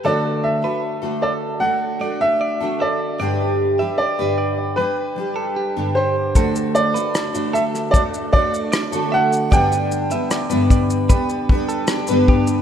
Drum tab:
SH |----------------|----------------|xxxxxxxxxx-xxx-x|xxxxxxxxxx-xxx-x|
SD |----------------|----------------|----r--r----r---|----r-------r---|
BD |----------------|----------------|o-------o-o-----|o-----o-o-o---o-|